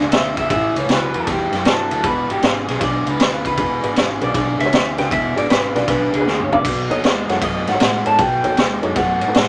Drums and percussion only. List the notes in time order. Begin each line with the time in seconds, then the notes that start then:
0.00 snare
0.12 snare, ride
0.37 kick, ride
0.50 kick, ride
0.76 ride
0.89 snare, ride
1.14 ride
1.27 kick, snare, ride
1.53 snare, ride
1.65 snare, ride
1.91 ride
2.04 kick, ride
2.30 ride
2.42 snare, ride
2.68 snare, ride
2.81 kick, snare, ride
3.07 ride
3.20 snare, ride
3.45 kick, ride
3.57 kick, ride
3.84 ride
3.96 snare, ride
4.21 ride
4.34 kick, snare, ride
4.60 snare, ride
4.73 snare, ride
4.98 snare, ride
5.11 kick, ride
5.37 ride
5.50 snare, ride
5.76 snare, ride
5.88 kick, snare, ride
6.14 ride
6.27 snare
6.40 mid tom
6.52 floor tom
6.65 kick, ride, crash
6.91 ride
7.04 snare, ride
7.29 snare, ride
7.42 kick, ride
7.67 snare, ride
7.80 snare, ride
8.06 ride
8.19 kick, ride
8.44 ride
8.57 snare, ride
8.83 ride
8.96 kick, snare, ride
9.21 ride
9.34 snare, ride